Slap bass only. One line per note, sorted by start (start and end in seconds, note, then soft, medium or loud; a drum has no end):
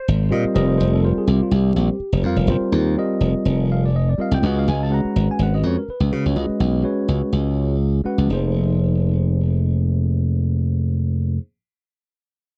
0.08 0.30 G#1 medium
0.32 0.44 A#2 medium
0.45 muted slap bass stroke soft
0.55 0.78 F1 medium
0.80 1.15 F1 medium
1.17 muted slap bass stroke soft
1.27 1.40 C2 medium
1.41 muted slap bass stroke soft
1.51 1.74 C2 medium
1.76 1.88 A#1 medium
2.00 muted slap bass stroke soft
2.12 2.23 F1 medium
2.23 2.36 F2 medium
2.36 2.46 F1 medium
2.47 2.60 F1 medium
2.61 muted slap bass stroke soft
2.72 2.95 D#2 medium
3.21 3.33 F1 medium
3.45 4.14 F1 medium
4.18 muted slap bass stroke soft
4.31 4.42 C2 medium
4.43 4.65 C#2 medium
4.68 5.02 C#2 medium
5.05 muted slap bass stroke soft
5.16 5.28 G#1 medium
5.29 muted slap bass stroke soft
5.39 5.62 G#1 medium
5.63 5.76 F2 medium
5.88 muted slap bass stroke soft
6.00 6.11 C#2 medium
6.12 6.24 C#3 medium
6.26 6.35 C#2 medium
6.36 6.48 C#2 medium
6.49 muted slap bass stroke soft
6.60 6.83 B1 medium
7.08 7.21 C#2 medium
7.33 8.02 C#2 medium
8.05 muted slap bass stroke soft
8.18 8.29 C#2 medium
8.30 11.38 F1 medium